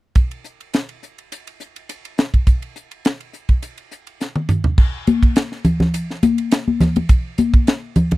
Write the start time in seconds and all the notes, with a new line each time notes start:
0.15 kick, hi-hat pedal, ride
0.31 ride
0.44 hi-hat pedal
0.60 ride
0.74 snare, hi-hat pedal, ride
0.89 ride
1.03 hi-hat pedal
1.18 ride
1.32 hi-hat pedal, ride
1.47 ride
1.60 hi-hat pedal
1.76 ride
1.89 hi-hat pedal, ride
2.05 ride
2.18 snare, hi-hat pedal
2.34 kick, ride
2.47 kick, hi-hat pedal, ride
2.62 ride
2.76 hi-hat pedal
2.91 ride
3.05 snare, hi-hat pedal, ride
3.20 ride
3.33 hi-hat pedal
3.49 kick, ride
3.63 hi-hat pedal, ride
3.78 ride
3.92 hi-hat pedal
4.07 ride
4.21 snare, hi-hat pedal
4.36 high tom
4.49 hi-hat pedal, mid tom
4.64 floor tom
4.78 kick, crash
5.07 hi-hat pedal, ride, high conga
5.23 kick, ride
5.36 snare, hi-hat pedal, ride
5.52 snare
5.65 hi-hat pedal, ride, low conga
5.80 snare, low conga
5.94 hi-hat pedal, ride
6.10 snare
6.23 hi-hat pedal, ride, high conga
6.38 ride
6.51 snare, hi-hat pedal, ride
6.68 high conga
6.80 snare, hi-hat pedal, ride, low conga
6.96 ride, high conga
7.09 kick, hi-hat pedal, ride
7.38 hi-hat pedal, ride, high conga
7.54 kick, ride
7.67 snare, hi-hat pedal, ride
7.96 hi-hat pedal, ride, low conga
8.11 ride, low conga